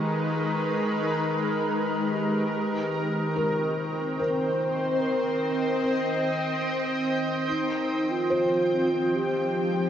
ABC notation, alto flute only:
X:1
M:3/4
L:1/16
Q:1/4=72
K:Cm
V:1 name="Alto flute"
A8 z2 G2 | G6 z2 c4 | B6 z6 | E3 F4- F G4 |]